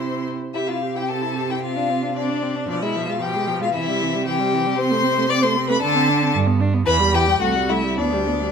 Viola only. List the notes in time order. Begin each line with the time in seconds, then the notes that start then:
Already playing: E4
0.54 G4
0.67 E4
0.82 G4
0.95 E4
1.08 G4
1.21 E4
1.36 G4
1.49 E4
1.62 C4
1.76 D4
1.90 C4
2.02 D4
2.16 C4
2.30 D4
2.42 C4
2.56 D4
2.69 F3
2.82 G#3
2.96 F3
3.09 G#3
3.22 F3
3.36 G#3
3.48 F3
3.62 G#3
3.74 E3
3.88 G3
4.02 E3
4.15 G3
4.27 E3
4.39 G3
4.54 E3
4.66 G3
4.78 C4
4.91 A3
5.04 C4
5.18 A3
5.30 C4
5.44 A3
5.57 C4
5.70 A3
5.82 D4
5.95 C4
6.09 D4
6.22 C4
6.35 D4
6.47 B3
6.61 D4
6.74 B3
6.87 E3
7.00 G3
7.14 E3
7.27 G3
7.41 A3
7.55 G3
7.70 A3
7.83 G3
7.99 B3
8.13 G3
8.27 B3
8.42 G3